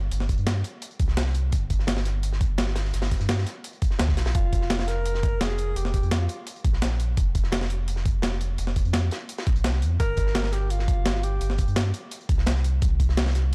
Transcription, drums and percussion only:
0.11 closed hi-hat medium
0.20 snare soft
0.29 kick medium
0.29 closed hi-hat medium
0.38 closed hi-hat soft
0.47 snare loud
0.47 closed hi-hat medium
0.64 closed hi-hat medium
0.82 closed hi-hat medium
0.91 closed hi-hat soft
1.00 kick medium
1.00 closed hi-hat medium
1.08 snare soft
1.17 snare loud
1.17 closed hi-hat medium
1.26 snare soft
1.34 closed hi-hat medium
1.52 kick loud
1.52 closed hi-hat medium
1.70 kick medium
1.70 closed hi-hat medium
1.79 snare soft
1.87 snare loud
1.87 closed hi-hat medium
1.87 open hi-hat medium
1.97 snare soft
1.97 snare medium
2.05 snare soft
2.05 closed hi-hat medium
2.23 closed hi-hat medium
2.32 snare soft
2.41 kick loud
2.41 closed hi-hat medium
2.58 snare loud
2.58 closed hi-hat medium
2.67 snare soft
2.76 snare loud
2.76 closed hi-hat medium
2.76 open hi-hat medium
2.85 snare soft
2.93 snare soft
2.93 closed hi-hat medium
3.02 snare loud
3.02 snare soft
3.02 open hi-hat medium
3.11 kick medium
3.11 snare soft
3.11 closed hi-hat medium
3.20 snare soft
3.20 closed hi-hat medium
3.29 snare loud
3.29 closed hi-hat medium
3.29 open hi-hat medium
3.38 snare medium
3.47 snare soft
3.47 closed hi-hat medium
3.64 closed hi-hat medium
3.73 closed hi-hat soft
3.82 kick loud
3.82 closed hi-hat medium
3.91 snare soft
3.99 snare medium
3.99 snare loud
3.99 closed hi-hat medium
3.99 open hi-hat medium
4.09 kick medium
4.09 snare soft
4.17 snare loud
4.17 closed hi-hat medium
4.17 open hi-hat medium
4.26 snare loud
4.26 open hi-hat medium
4.35 kick loud
4.35 closed hi-hat medium
4.53 kick medium
4.53 closed hi-hat medium
4.62 snare soft
4.70 snare loud
4.70 closed hi-hat medium
4.70 open hi-hat medium
4.79 snare soft
4.79 snare medium
4.88 snare soft
4.88 closed hi-hat medium
5.05 closed hi-hat medium
5.14 snare soft
5.23 kick loud
5.23 closed hi-hat medium
5.41 snare loud
5.41 closed hi-hat loud
5.41 closed hi-hat medium
5.49 snare soft
5.58 closed hi-hat medium
5.76 closed hi-hat medium
5.85 snare soft
5.94 kick medium
5.94 closed hi-hat medium
6.03 closed hi-hat soft
6.11 snare loud
6.11 closed hi-hat medium
6.11 closed hi-hat loud
6.29 closed hi-hat medium
6.47 closed hi-hat medium
6.56 closed hi-hat soft
6.64 kick loud
6.64 closed hi-hat medium
6.73 snare soft
6.82 snare loud
6.82 closed hi-hat medium
6.82 closed hi-hat loud
6.92 snare soft
7.00 closed hi-hat medium
7.17 kick loud
7.17 closed hi-hat medium
7.35 kick medium
7.35 closed hi-hat medium
7.44 snare soft
7.52 snare loud
7.52 closed hi-hat medium
7.52 open hi-hat medium
7.61 snare soft
7.61 snare medium
7.70 closed hi-hat medium
7.88 closed hi-hat medium
7.96 snare soft
8.06 kick loud
8.06 closed hi-hat medium
8.22 snare loud
8.22 closed hi-hat medium
8.32 snare soft
8.41 closed hi-hat medium
8.58 closed hi-hat medium
8.67 snare soft
8.76 kick medium
8.76 closed hi-hat medium
8.85 closed hi-hat soft
8.93 snare loud
8.93 closed hi-hat medium
9.11 snare medium
9.11 closed hi-hat medium
9.29 closed hi-hat medium
9.38 snare loud
9.38 closed hi-hat medium
9.46 kick loud
9.46 snare soft
9.46 closed hi-hat medium
9.56 closed hi-hat medium
9.64 snare loud
9.64 closed hi-hat medium
9.73 snare soft
9.82 closed hi-hat medium
10.00 kick loud
10.00 closed hi-hat medium
10.17 kick medium
10.17 closed hi-hat medium
10.27 snare soft
10.35 snare loud
10.35 closed hi-hat medium
10.35 open hi-hat medium
10.44 snare medium
10.44 snare soft
10.52 snare soft
10.52 closed hi-hat medium
10.70 closed hi-hat medium
10.79 snare soft
10.88 kick loud
10.88 closed hi-hat medium
11.05 snare loud
11.05 closed hi-hat medium
11.14 snare soft
11.23 closed hi-hat medium
11.41 closed hi-hat medium
11.50 snare soft
11.58 kick medium
11.58 closed hi-hat medium
11.68 closed hi-hat soft
11.76 snare loud
11.76 closed hi-hat medium
11.94 closed hi-hat medium
12.11 closed hi-hat medium
12.21 closed hi-hat soft
12.29 kick loud
12.29 closed hi-hat medium
12.38 snare soft
12.46 snare loud
12.46 closed hi-hat medium
12.56 snare soft
12.64 closed hi-hat medium
12.82 kick loud
12.82 closed hi-hat medium
13.00 kick medium
13.00 closed hi-hat medium
13.09 snare soft
13.17 snare loud
13.17 closed hi-hat medium
13.17 open hi-hat medium
13.26 snare soft
13.26 snare medium
13.35 snare soft
13.35 closed hi-hat medium

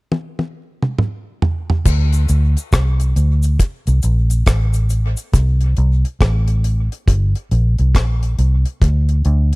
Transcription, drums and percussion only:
0.12 high tom medium
0.39 high tom soft
0.82 mid tom medium
0.99 mid tom medium
1.42 floor tom medium
1.70 floor tom medium
1.85 kick loud
1.85 crash medium
1.85 cabasa medium
2.13 closed hi-hat medium
2.13 cabasa medium
2.29 closed hi-hat medium
2.29 cabasa medium
2.57 closed hi-hat medium
2.57 cabasa medium
2.73 kick loud
2.73 cross-stick loud
2.73 closed hi-hat medium
2.73 cabasa medium
3.00 closed hi-hat medium
3.00 cabasa soft
3.16 closed hi-hat medium
3.16 cabasa medium
3.43 closed hi-hat medium
3.43 cabasa medium
3.60 kick loud
3.60 closed hi-hat loud
3.60 cabasa medium
3.87 closed hi-hat medium
3.87 cabasa soft
4.02 closed hi-hat medium
4.02 cabasa medium
4.30 closed hi-hat soft
4.30 cabasa medium
4.46 kick loud
4.46 cross-stick loud
4.46 closed hi-hat medium
4.46 cabasa medium
4.73 closed hi-hat medium
4.73 cabasa medium
4.90 closed hi-hat medium
4.90 cabasa soft
5.17 closed hi-hat soft
5.17 cabasa medium
5.34 kick loud
5.34 closed hi-hat medium
5.34 cabasa medium
5.61 closed hi-hat medium
5.77 closed hi-hat medium
6.05 closed hi-hat medium
6.21 kick loud
6.21 cross-stick loud
6.21 closed hi-hat medium
6.48 closed hi-hat medium
6.64 closed hi-hat medium
6.92 closed hi-hat medium
7.08 kick loud
7.08 closed hi-hat medium
7.35 closed hi-hat medium
7.51 closed hi-hat medium
7.78 closed hi-hat soft
7.95 kick loud
7.95 cross-stick loud
7.95 closed hi-hat medium
8.23 closed hi-hat medium
8.39 closed hi-hat medium
8.65 closed hi-hat medium
8.82 kick loud
8.82 closed hi-hat medium
9.09 closed hi-hat soft
9.25 closed hi-hat medium

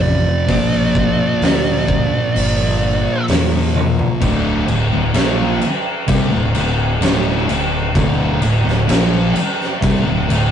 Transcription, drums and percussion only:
0.49 kick loud
0.49 open hi-hat medium
0.95 kick medium
1.42 snare loud
1.42 open hi-hat medium
1.88 kick medium
2.36 open hi-hat medium
3.28 snare loud
3.28 open hi-hat medium
3.75 high tom medium
3.99 floor tom loud
4.22 kick loud
4.22 crash medium
4.68 crash medium
5.14 snare loud
5.14 crash medium
5.61 crash medium
6.08 kick loud
6.08 crash medium
6.55 crash medium
7.02 snare loud
7.02 crash medium
7.49 crash medium
7.95 kick loud
7.95 crash medium
8.42 crash medium
8.68 snare soft
8.89 snare loud
8.89 crash loud
9.36 crash medium
9.61 snare soft
9.82 kick loud
9.82 crash medium
10.30 crash medium

